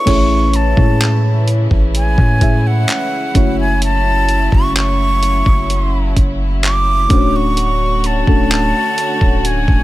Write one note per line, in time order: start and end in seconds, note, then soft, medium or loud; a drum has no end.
0.00 0.28 B4 soft
0.00 0.28 E5 medium
0.00 0.57 C#6 loud
0.06 0.75 A1 loud
0.06 3.32 C#3 medium
0.06 3.32 E3 medium
0.06 0.54 A3 medium
0.06 0.54 C#4 medium
0.06 7.06 C#4 medium
0.06 7.06 E4 medium
0.06 0.54 E4 medium
0.06 0.55 G#4 medium
0.06 0.55 C#5 loud
0.06 kick loud
0.06 closed hi-hat medium
0.06 crash medium
0.53 1.49 A5 medium
0.53 closed hi-hat medium
0.76 1.67 A2 loud
0.76 1.88 G#3 medium
0.76 1.88 A3 medium
0.76 1.88 C#4 medium
0.76 1.88 E4 medium
0.76 1.89 C#5 medium
0.76 kick medium
1.01 clap loud
1.01 closed hi-hat medium
1.48 closed hi-hat medium
1.71 2.16 A1 medium
1.71 kick medium
1.95 2.69 G#5 medium
1.95 closed hi-hat medium
2.18 2.86 A2 loud
2.18 kick medium
2.40 3.33 A3 medium
2.40 3.34 C#4 medium
2.40 3.34 E4 medium
2.40 3.36 G#4 medium
2.40 3.36 E5 medium
2.40 kick medium
2.40 closed hi-hat medium
2.67 3.60 F#5 medium
2.88 clap loud
2.88 closed hi-hat medium
3.34 4.48 F#1 loud
3.34 7.06 C#3 medium
3.34 7.06 F#3 medium
3.34 4.85 A3 medium
3.34 4.85 C#4 medium
3.34 4.85 E4 medium
3.34 4.86 F#4 medium
3.34 4.86 C#5 medium
3.34 kick loud
3.34 closed hi-hat medium
3.61 3.82 G#5 medium
3.82 4.56 A5 loud
3.82 closed hi-hat medium
4.29 closed hi-hat medium
4.52 5.42 F#1 medium
4.52 4.77 C#6 loud
4.52 kick medium
4.76 6.14 C#6 loud
4.76 clap loud
4.76 closed hi-hat medium
5.23 closed hi-hat medium
5.46 6.14 F#1 medium
5.46 kick medium
5.70 closed hi-hat medium
6.16 7.07 F#1 loud
6.16 kick medium
6.16 closed hi-hat medium
6.63 7.37 D6 loud
6.63 clap loud
6.63 closed hi-hat medium
7.09 8.24 D1 loud
7.09 9.83 D3 medium
7.09 8.03 A3 medium
7.09 9.83 A3 medium
7.09 8.04 C#4 medium
7.09 8.04 D4 medium
7.09 9.83 F#4 medium
7.09 8.04 F#4 medium
7.09 7.17 C5 medium
7.09 9.83 C#5 medium
7.09 kick loud
7.09 closed hi-hat medium
7.18 8.08 C#5 medium
7.36 8.08 C#6 loud
7.57 closed hi-hat medium
8.04 9.48 A5 loud
8.04 closed hi-hat medium
8.26 8.73 D1 medium
8.26 9.38 A3 medium
8.26 9.38 C#4 medium
8.26 9.38 D4 medium
8.26 9.39 F#4 medium
8.26 9.39 A4 medium
8.26 kick medium
8.51 clap loud
8.51 closed hi-hat medium
8.98 closed hi-hat medium
9.21 9.66 D1 loud
9.21 kick medium
9.45 9.83 G#5 loud
9.45 closed hi-hat medium
9.68 9.83 D1 loud
9.68 kick medium